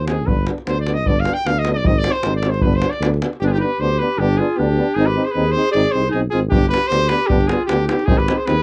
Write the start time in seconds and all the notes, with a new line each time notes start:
Already playing: D#2
0.07 C4 D#4 G#4, davul high
0.26 G1 B3 D4 B4, davul low
0.46 B3 D4, davul high
0.58 davul high
0.66 D2 B3 D4 C5, davul high
0.80 D5
0.87 B3 D4, davul high
0.93 D#5, davul high
1.06 G1 B3 D4 D5, davul low
1.20 F5
1.25 B3 D4, davul high
1.34 G5, davul high
1.46 D2 B3 D4 F5, davul high
1.59 D#5
1.65 B3 D4, davul high
1.73 D5, davul high
1.84 G#1 C4 D#4 D#5, davul low
1.98 D5
2.04 C4 D#4, davul high
2.12 C5, davul high
2.23 G#1 C4 D#4, davul high
2.36 D5
2.43 C4 D#4, davul high
2.49 C5
2.54 davul high
2.61 G1 B3 B4, davul low
2.66 D4
2.73 C5, davul high
2.81 B3 D4, davul high
2.90 D5, davul high
3.00 D2 B3, davul high
3.05 D4
3.14 davul high
3.22 B3 D4, davul high
3.33 davul high
3.40 G1 B3 D4 G4
3.47 F4 G#4
3.52 D#4 G4
3.60 B3 D4 G4 B4
3.79 D2 B3 D4 G4 C5
3.99 B3 D4 G4 B4
4.18 G1 B3 D4 G4
4.37 B3 D4 F4 G#4
4.57 D2 B3 D4 G4
4.78 B3 D4
4.95 G#1 C4 D#4 G#4
5.00 D#4
5.05 G4 B4
5.16 C4 D#4
5.25 G#4 C5
5.31 G#4 B4
5.35 D#2 C4 D#4
5.51 C4 G#4 C5
5.57 D#4
5.71 G#1 C4 D#4 G#4 D5
5.90 C4 G#4 C5
5.94 C2 D#4
6.09 D#4 G#4
6.13 B1 C4 D#4
6.30 G#1 C4 D#4 F4 G#4
6.48 G1 D4 G4, davul low
6.53 B3 D4
6.64 davul high
6.68 B3 G4 B4
6.72 D4, davul high
6.87 B3 D4 G4 C5
6.91 D2, davul high
7.09 B3 D4 G4 B4, davul high
7.21 davul high
7.27 G1 B3 D4 G4, davul low
7.31 D4
7.41 davul high
7.47 B3 D4 F4 G#4, davul high
7.66 D2 D4 G4, davul high
7.70 B3 D4
7.86 B3 D#4 G4, davul high
7.90 D4
7.99 davul high
8.06 G#1 C4 D#4 G#4, davul low
8.17 G4 B4, davul high
8.28 C4 D#4, davul high
8.37 G#4 C5
8.46 D#2 C4 D#4 G#4 B4, davul high